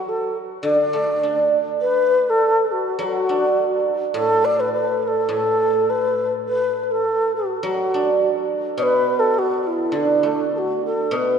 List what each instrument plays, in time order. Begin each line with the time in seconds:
Already playing: guzheng F#3, xiao F#4
0.09 xiao A4
0.63 guzheng D3, xiao D5
0.93 guzheng A3
1.23 guzheng D4
1.81 xiao B4
2.27 xiao A4 B4
2.65 xiao A4
2.72 xiao F#4
2.99 guzheng F#3, xiao A4
3.04 xiao F#4
3.29 guzheng D4
4.14 guzheng A2, xiao A4
4.45 xiao D5
4.60 xiao B4
4.73 xiao B4
5.03 xiao B4
5.07 xiao A4
5.29 guzheng A2, xiao A4
5.90 xiao B4
6.49 xiao B4
6.83 xiao B4
6.91 xiao A4
7.36 xiao F#4
7.63 guzheng F#3, xiao F#4
7.94 guzheng D4
8.78 guzheng B2, xiao D5
8.83 xiao B4
9.19 xiao A4
9.34 xiao A4
9.39 xiao F#4
9.63 xiao E4 F#4
9.91 guzheng D3, xiao E4
9.95 xiao D4
10.23 guzheng A3
10.55 xiao F#4 A4
10.86 xiao A4
11.11 guzheng B2
11.16 xiao B4